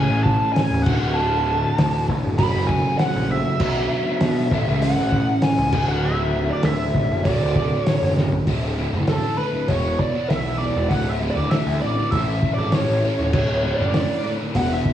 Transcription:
Already playing: A2 E3 A3 C#4 E4 A4 G#5
0.10 A1
0.23 A5, kick
0.53 G#5, snare, open hi-hat
0.71 D#1
0.83 D1 D2 A2 F#5, kick, crash
0.88 D3 A3 F#4
1.15 A5
1.78 D2, snare, open hi-hat
2.08 A1, kick
2.24 F#1
2.38 F#1 F#2 C#3 F#3 A3 C#4 F#4 B5, kick, open hi-hat
2.55 F#1
2.67 G#5, kick
2.98 F#5, snare, open hi-hat
3.16 A#1
3.31 E5
3.60 B1 B2 F#3 B3 D4 F#4 B4, kick, crash
4.21 B2, snare, open hi-hat
4.51 A1 A2 E3 A3 C#4 E4 A4, kick
4.68 C#2
4.82 F#5, open hi-hat
4.99 A1
5.12 kick
5.42 G#5, snare, open hi-hat
5.58 C#2
5.72 D1 D2 A2 D3 A3 F#4, kick, crash
5.89 F#5
6.05 E5
6.51 D5
6.63 D2 E5, snare, open hi-hat
6.95 A1, kick
7.11 F#1
7.24 D1 D2 A2 D3 A3 F#4 D5, kick, open hi-hat
7.42 D1
7.56 kick
7.84 C#5, snare, open hi-hat
8.02 F#1
8.17 snare
8.32 floor tom
8.47 D1 D2 A2 D3 A3 E4, kick, open hi-hat
8.77 A2 D3 A3 E4
8.93 F#1 D3 A3 E4
9.07 D2 A2 D3 A3 E4 A4, snare, open hi-hat
9.38 A2 D3 A3 E4 B4
9.52 D3 A3 E4
9.68 E1 E2 B2 E3 B3 E4 C#5, kick, open hi-hat
9.84 E3 B3 E4
9.99 D5, kick
10.14 E3 B3 E4
10.29 B1 E2 B2 E3 B3 E4 E5, snare, open hi-hat
10.58 B2 E3 B3 E4 D5
10.75 E1 E3 B3 E4
10.89 D1 D2 A2 D3 A3 E4 F#5, kick, open hi-hat
11.09 E5
11.20 A2 D3 A3 E4
11.30 D5
11.35 D1 D3 A3 E4
11.51 D2 A2 D3 A3 E4 E5, snare, open hi-hat
11.67 D2
11.81 A1 A2 D3 A3 E4 D5
11.97 D3 A3 E4
12.12 A1 A2 E3 A3 C#4 E4 A4 E5, kick, open hi-hat
12.27 A3 C#4 E4 A4
12.43 kick
12.54 A4 D5
12.58 G#1 A3 C#4 E4
12.72 A2 E3 A3 C#4 E4 A4 C#5, snare, open hi-hat
12.88 A1
13.03 A3 C#4 E4 A4 C#5
13.19 D#1 A3 C#4 E4 A4
13.33 D1 D2 A2 D3 A3 E4, kick, crash
13.63 A2 D3 A3 E4
13.75 E4 D5
13.80 F#1 D3 A3
13.94 D2 A2 D3 A3 E4, snare, open hi-hat
14.24 A2 D3 A3 E4
14.40 D3 A3 E4
14.54 E1 E2 B2 E3 B3 E4 F#5, kick, open hi-hat
14.70 E3 B3 E4 E5
14.86 kick

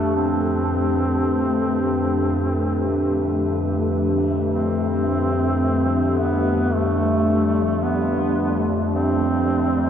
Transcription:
Already playing: F2 C3 F3 A3 D4 G4 A4 B4
0.16 C4
4.52 G3 C4
6.19 B3
6.74 A3
7.83 B3
8.22 B4
8.93 C4

